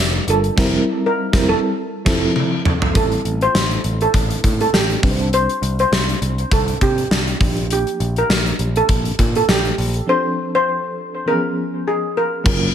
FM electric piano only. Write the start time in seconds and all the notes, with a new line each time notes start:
Already playing: G3 D4 F4 A#4
0.27 G3 D4 F4 A#4
0.56 G3 C4 E4 A#4
1.32 G3 C4 E4 A#4
2.05 F3 C4 E4 A4
2.94 G3 C4 E4 A4
5.02 G3 C4 D4 B4
5.11 C5
7.40 F3 A#3 D4 G4
10.06 F3 C4 D4 A4
11.26 E3 B3 C#4 G#4
11.32 F3
12.44 F#3 A#3 C#4 F4 A#4